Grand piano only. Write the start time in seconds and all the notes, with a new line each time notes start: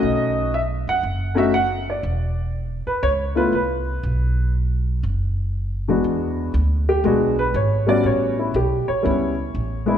Already playing: A3 C#4 D#4 F#4 D#5
0.54 E5
0.89 F#5
1.34 A3 C#4 D#4 F#4 E5
1.54 F#5
1.90 D5
2.87 B4
3.03 C#5
3.35 A3 B3 E4 F4 B4
3.55 B4
5.88 E2 G#3 B3 D4 F#4
6.89 G4
7.04 G#3 B3 D4 F#4 G#4
7.39 B4
7.56 C#5
7.87 G3 B3 C#4 F#4 D5
8.06 C#5
8.39 E4
8.56 G4
8.88 C#5
9.03 G3 B3 C#4 E4
9.86 G#3 B3 D4 E4